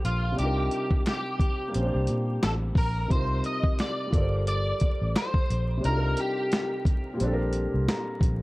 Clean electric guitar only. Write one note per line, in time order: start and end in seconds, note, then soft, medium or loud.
0.05 0.38 F4 medium
0.39 1.02 G4 medium
1.08 2.43 G4 medium
2.44 2.53 A4 medium
2.78 3.11 A#4 medium
3.12 3.45 C5 loud
3.46 3.80 D#5 loud
3.80 4.44 D5 loud
4.48 5.17 D5 loud
5.17 5.85 C5 medium
5.85 6.19 A#4 loud
6.20 6.83 G4 medium